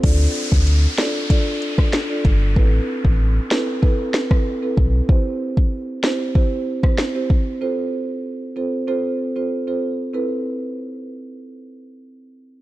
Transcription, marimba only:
\new Staff \with { instrumentName = "Marimba" } { \time 4/4 \key a \minor \tempo 4 = 95 <d' f' a' d''>4 r8 <d' f' a' d''>16 r16 <d' f' a' d''>8. <d' f' a' d''>16 r16 <d' f' a' d''>16 r8 | <c' e' a' b'>4 r8 <c' e' a' b'>16 r16 <c' e' a' b'>8. <c' e' a' b'>16 r16 <c' e' a' b'>16 r8 | <c' e' g' c''>4 r8 <c' e' g' c''>16 r16 <c' e' g' c''>8. <c' e' g' c''>16 r16 <c' e' g' c''>16 r8 | <c' f' a' c''>4 r8 <c' f' a' c''>16 r16 <c' f' a' c''>8. <c' f' a' c''>16 r16 <c' f' a' c''>16 r8 |
<c' e' a' b'>1 | }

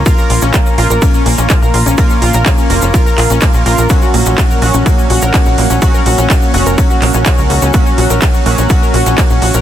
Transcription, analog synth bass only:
\new Staff \with { instrumentName = "Analog synth bass" } { \clef bass \time 4/4 \key ges \lydian \tempo 4 = 125 r8 bes,,16 bes,,16 r8 bes,,16 bes,,16 r8 bes,,16 bes,,16 r16 bes,,16 bes,,16 bes,,16 | r8 bes,,16 bes,,16 r8 f,,16 f,,16 r8 bes,,16 bes,,16 r16 bes,,16 bes,,16 bes,,16 | r8 bes,,16 bes,,16 r8 bes,,16 bes,,16 r8 bes,,16 bes,,16 r16 bes,,16 bes,,16 bes,,16 | r8 bes,,16 bes,,16 r8 f,,16 f,,16 r8 bes,,16 bes,,16 r16 des,16 des,16 des,16 |
r8 bes,,16 bes,,16 r8 bes,,16 bes,,16 r8 bes,,16 bes,,16 r16 bes,,16 bes,,16 bes,,16 | }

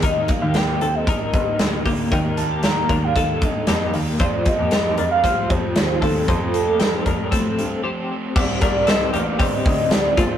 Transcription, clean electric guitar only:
\new Staff \with { instrumentName = "Clean electric guitar" } { \time 4/4 \key ees \lydian \tempo 4 = 115 <ees' bes'>8. <bes g'>16 <bes g'>8 <c' a'>8 <ees' bes'>4. <bes g'>8 | <ees' bes'>8. <bes g'>16 <bes g'>8 <d' bes'>8 <ees' a'>4 <bes g'>4 | <f' c''>8. <bes g'>16 <c' g'>8 <d' bes'>8 <f' c''>4. <c' a'>8 | <f' c''>8. <bes g'>16 <c' g'>8 <d' bes'>8 <c' a'>4 <c' g'>4 |
<c' g'>8 <d' bes'>8 <c' a'>8 <bes g'>8 <c' g'>4. <a f'>8 | }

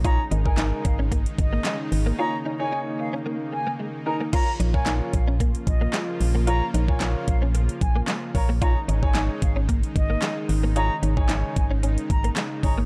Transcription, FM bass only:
\new Staff \with { instrumentName = "FM bass" } { \clef bass \time 4/4 \key bes \minor \tempo 4 = 112 bes,,8 aes,,4 aes,,4 aes,,8 r8 aes,,8 | r1 | r8 bes,,4 bes,,4 bes,,8 r8 bes,,8~ | bes,,8 bes,,4 bes,,4 bes,,8 r8 bes,,8~ |
bes,,8 aes,,4 aes,,4 aes,,8 r8 aes,,8~ | aes,,8 aes,,4 aes,,4 aes,,8 r8 aes,,8 | }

